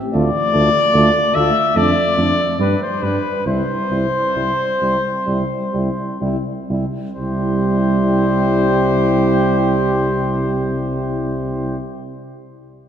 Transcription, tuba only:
0.14 D2
0.54 D2
0.94 D2
1.36 D2
1.76 F2
2.17 F2
2.59 G2
3.03 G2
3.46 C2
3.91 C2
4.36 C2
4.81 C2
5.28 C2
5.75 C2
6.22 C2
6.70 C2
7.19 C2

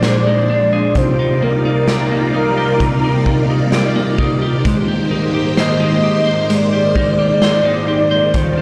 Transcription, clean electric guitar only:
Already playing: A#2 G#3 D4
0.04 G#4
0.27 G#3
0.50 D4
0.73 G#4
0.96 C3
1.19 D#4
1.42 A#3
1.65 D#4
1.88 G4
2.11 A#3
2.34 D#4
2.58 G4
2.81 C3
3.04 D#4
3.27 A#3
3.50 D#4
3.73 G4
3.96 A#3
4.19 D#4
4.42 G4
4.65 G#3
4.88 G4
5.11 D#4
5.34 G4
5.57 C5
5.80 D#4
6.03 G4
6.27 C5
6.50 G#3
6.73 G4
6.96 D#4
7.19 G4
7.42 C5
7.65 D#4
7.88 G4
8.11 C5
8.34 D#3
8.58 D4

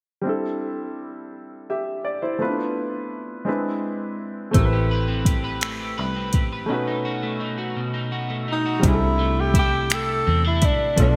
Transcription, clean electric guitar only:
4.55 A3
4.73 G4
4.91 B4
5.08 C4
5.27 G4
5.44 B4
5.62 A3
5.80 G4
5.98 B4
6.16 C4
6.35 G4
6.52 B4
6.70 B2
6.87 D#4
7.05 F#4
7.23 A3
7.40 D#4
7.58 F#4
7.76 B2
7.94 D#4
8.12 F#4
8.30 A3
8.48 D#4
8.66 F#4
8.83 C3
9.19 A3
9.55 E4
9.90 A3
10.27 C4
10.45 D4
10.62 E4
10.97 B2

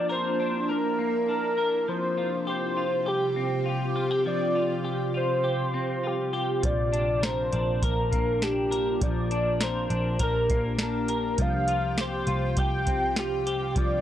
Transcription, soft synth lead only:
0.11 C5
0.71 A#4
1.30 A#4
1.89 C5
2.49 C5
3.08 G4
3.68 G4
4.27 D5
5.17 C5
6.07 G4
6.65 D5
7.25 C5
7.84 A#4
8.43 G4
9.02 D5
9.63 C5
10.23 A#4
10.82 A#4
11.41 F5
12.01 C5
12.59 G5
13.19 G4
13.78 D5

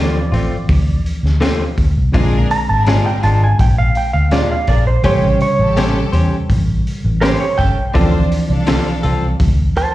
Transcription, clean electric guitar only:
Already playing: D3 A3 C4 F4
0.32 A3 C4 F4
1.41 D3 A3 C4 F4
2.14 A#2 G#3 D4 F4
2.87 A#2 G#3 D4 F4
3.23 G#3 D4 F4
4.32 A#2 G#3 D4 F4
5.04 A3 C#4 G4 C5
5.77 A3 C#4 G4 C5
6.12 C#4 G4 C5
7.22 A3 C#4 G4 C5
7.94 D3 C4 F4 A4
8.67 D3 C4 F4 A4
9.03 C4 F4 A4

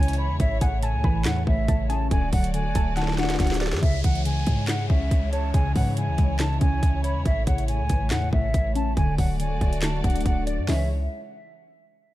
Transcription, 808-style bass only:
Already playing: C#2
0.30 E2
0.40 A1
0.61 A1
0.94 C#2
1.04 A1
1.26 E2
1.47 A1
1.68 A1
2.11 D1
2.33 D1
2.65 E1
2.75 D1
3.40 D1
3.73 F#2
3.83 C#2
4.04 C#2
4.47 G#2
4.90 C#2
5.11 C#2
5.54 C#2
5.76 G#2
6.08 D2
6.18 C#2
6.61 C#2
6.83 C#2
7.15 E2
7.26 A1
7.47 A1
7.80 C#2
7.90 A1
8.11 E2
8.33 A1
8.54 A1
8.97 D1
9.19 D1
9.51 E1
9.61 D1
10.04 D1
10.26 D1
10.58 F#2
10.68 C#2

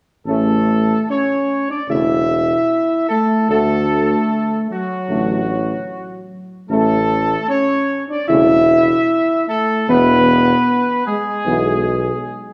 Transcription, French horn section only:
0.27 A3
1.09 C#4
1.70 D4
1.89 E4
3.10 A3
3.50 A3
4.70 F#3
6.69 A3
7.49 C#4
8.09 D4
8.28 E4
9.48 A3
9.88 B3
11.07 G#3

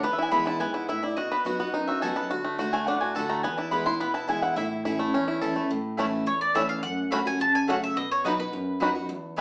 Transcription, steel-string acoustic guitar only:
0.03 E2
0.31 E3 G#3 B3 E4
0.60 G#2
0.89 A2
1.17 B2
1.45 F#3 B3 D#4 F#4
1.59 D#4 F#4
1.74 F#2
2.03 F#3 B3 D#4 F#4
2.31 D3
2.58 D3 A3 D4 F#4
2.88 A2
3.16 D3 A3 D4 F#4
3.44 E2
3.72 E3 G#3 B3 E4
3.85 B3 E4
4.01 B2
4.27 E3 G#3 B3 E4
4.56 A2
4.85 E3 A3 C#4 E4
5.00 C#4 E4
5.14 E2
5.41 E3 A3 C#4 E4
5.56 C#4 E4
5.70 A2
5.98 E3 A3 C#4 E4
6.26 E2
6.54 E3 A3 C#4 E4
6.84 F#2
7.11 F#3 A3 C#4 F#4
7.25 C#4 F#4
7.40 C#3
7.67 F#3 A3 C#4 F#4
7.97 B2
8.25 F#3 B3 D#4 F#4
8.38 D#4 F#4
8.53 F#2
8.80 F#3 B3 D#4 F#4
8.95 D#4 F#4
9.09 E2
9.36 E3 G#3

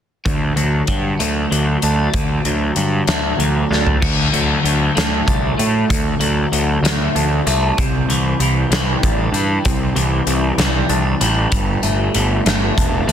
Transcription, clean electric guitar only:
0.25 D3
0.56 F#3
0.88 F#3
1.19 A3
1.51 F#3
1.83 D4
2.14 D3
2.45 F#3
2.77 F#3
3.08 A3
3.40 F#3
3.71 D4
4.02 D3
4.32 F#3
4.63 F#3
4.95 A3
5.27 D4
5.57 A3
5.90 D3
6.20 F#3
6.53 F#3
6.84 A3
7.15 D4
7.47 A3
7.79 C3
8.10 E3
8.42 E3
8.72 G3
9.04 D4
9.35 G3
9.66 C3
9.96 E3
10.27 E3
10.59 G3
10.90 D4
11.21 G3
11.51 G3
11.83 A3
12.15 G3
12.46 A3
12.78 D4
13.08 A3

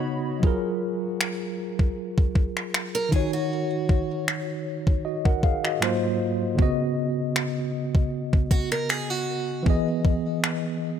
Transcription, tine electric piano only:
Already playing: C#3 B3 D#4 F#4
0.40 F#3 F4
0.44 G#4 A#4
3.09 D#3 D#4
3.13 F4 C#5
3.20 F#4
5.05 F#4 D#5
5.25 A#4 F#5
5.43 G#4 F5
5.64 F#4 D#5
5.80 G#2 F#3 A#3 F4 C5
6.55 C#3 B3
6.60 F#4 D#5
9.63 E3 B3
9.68 G#4 D#5

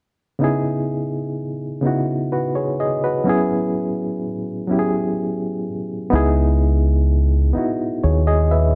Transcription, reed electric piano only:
0.39 C#3 B3 D#4 E4
0.44 G#4
1.81 C#3 B3 D#4
1.85 E4 F#4
2.32 F#4 B4
2.55 G#4 C#5
2.80 G#4 D#5
3.04 F#4 B4
3.24 F#3 B3 C#4 E4
3.29 G#4
4.68 F#3 B3 C#4 E4
4.72 G4
4.79 G#4
6.10 B3 D#4 E4
6.15 G#4
7.53 B3 D#4 E4
7.58 F#4
8.04 G#4 C#5
8.27 G#4 D#5
8.51 B4 E5

